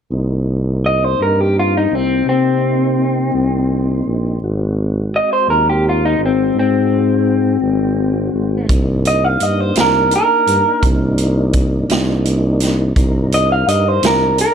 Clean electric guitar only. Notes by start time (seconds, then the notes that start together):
0.86 D#5
1.04 C5
1.22 A#4
1.41 G4
1.59 F4
1.77 D#4
1.95 C4
2.29 C4
5.16 D#5
5.33 C5
5.50 A#4
5.70 G4
5.89 F4
6.05 D#4
6.26 C4
6.59 C4
9.07 D#5
9.24 F5
9.43 D#5
9.60 C5
9.81 A#4
10.16 A#4
13.34 D#5
13.52 F5
13.69 D#5
13.88 C5
14.07 A#4
14.41 A#4